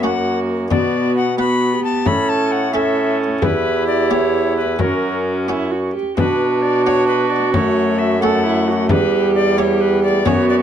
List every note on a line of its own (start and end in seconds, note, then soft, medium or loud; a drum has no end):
0.00 0.67 F#2 soft
0.00 0.69 F#2 medium
0.00 0.67 A#3 soft
0.00 0.67 C#4 soft
0.00 0.69 F#4 medium
0.00 0.40 F#5 medium
0.04 0.71 A#3 medium
0.04 0.68 F#4 soft
0.70 1.74 B2 soft
0.70 1.76 B2 medium
0.70 1.38 B3 medium
0.70 1.37 F#4 medium
0.70 1.15 D5 medium
0.70 frame drum medium
1.16 1.38 F#5 medium
1.38 1.87 B3 medium
1.38 2.09 B3 medium
1.38 1.74 F#4 medium
1.38 1.88 F#5 medium
1.38 1.83 B5 loud
1.72 2.07 G4 medium
1.84 2.08 A5 medium
2.06 3.38 A2 soft
2.06 3.38 A2 medium
2.06 2.74 C#4 medium
2.06 2.73 A4 medium
2.06 2.31 B5 loud
2.06 frame drum medium
2.29 2.53 A5 medium
2.52 2.75 F#5 medium
2.73 3.23 C#4 soft
2.73 3.44 C#4 medium
2.73 3.23 E4 soft
2.73 3.44 A4 medium
2.73 3.23 A4 medium
2.73 3.18 E5 medium
3.42 4.77 E2 medium
3.42 4.76 E2 medium
3.42 4.82 E4 medium
3.42 4.79 G4 medium
3.42 3.85 B4 medium
3.42 frame drum medium
3.87 4.12 D5 medium
4.11 4.60 B3 medium
4.11 4.60 E4 soft
4.11 4.61 G4 medium
4.11 4.56 C#5 medium
4.57 4.81 B4 medium
4.79 5.91 F#2 soft
4.79 5.93 F#2 medium
4.79 5.98 C#4 medium
4.79 5.43 F#4 medium
4.79 5.49 A#4 medium
4.79 frame drum medium
5.48 5.98 C#4 soft
5.48 5.73 E4 medium
5.48 5.99 F#4 soft
5.71 5.94 F#4 medium
5.95 6.17 G4 medium
6.17 7.50 B2 medium
6.17 7.56 D4 medium
6.17 8.18 F#4 medium
6.17 6.64 B4 medium
6.17 frame drum medium
6.62 6.85 D5 medium
6.85 7.35 D4 medium
6.85 7.36 F#4 medium
6.85 7.07 C#5 medium
7.07 7.32 B4 medium
7.30 7.53 D5 medium
7.53 8.86 F#2 medium
7.53 8.91 F#2 medium
7.53 8.22 A3 medium
7.53 8.00 C#5 medium
7.53 frame drum medium
7.99 8.23 E5 medium
8.21 8.92 A3 medium
8.21 8.71 A3 medium
8.21 8.72 C#4 medium
8.21 8.72 F#4 medium
8.21 8.44 A4 medium
8.21 8.89 F#5 medium
8.46 8.70 E4 medium
8.68 8.90 F#4 medium
8.89 10.28 E2 medium
8.89 10.22 E2 medium
8.89 10.26 G3 medium
8.89 9.57 G4 medium
8.89 9.34 B4 medium
8.89 frame drum medium
9.35 9.60 D5 medium
9.58 10.07 B3 medium
9.58 10.07 E4 medium
9.58 10.25 G4 medium
9.58 10.08 G4 medium
9.58 9.82 C#5 medium
9.81 10.03 B4 medium
10.03 10.27 D5 loud
10.25 10.62 F#2 medium
10.25 10.62 B3 medium
10.25 10.62 C#4 medium
10.25 10.62 F#4 medium
10.25 10.48 C#5 medium
10.25 frame drum medium
10.49 10.55 D5 loud